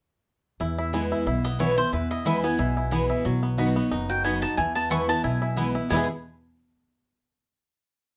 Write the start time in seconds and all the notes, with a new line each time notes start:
0.60 E2 E4
0.78 E4
0.93 E3 G#3 B3 E4 B4 G#5
1.12 E4
1.26 B1 B2 E4
1.44 B3 D#5
1.59 E3 G#3 B3 E4 B4 C#5 G#5
1.77 B3 E4 C5
1.93 E2 E4 B4
2.11 E4 D#5
2.25 E3 G#3 B3 E4 B4 E5 G#5
2.43 B3 E4 G#5
2.59 B1 B2 E4
2.77 E4
2.91 E3 G#3 B3 E4 B4 G#5
3.10 E4
3.25 B1 B2 F#3
3.43 B3
3.58 F#3 B3 D#4 F#4 D#5 B5
3.76 B3
3.91 F#1 F#2 D#4
4.09 F#4 G5
4.24 F#3 B3 D#4 F#4 D#5 G#5 B5
4.42 D#4 F#4 A5
4.57 E2 E3 G#5
4.75 B3 A5
4.90 E3 G#3 B3 E4 B4 G#5 C#6
5.08 B3 E4 A5
5.24 B1 B2 E4 G#5
5.42 E4
5.56 E3 G#3 B3 E4 B4 G#5
5.75 B3 E4
5.89 E2 B2 E3 G#3 B3 E4 B4 G#5
5.94 E4 G#4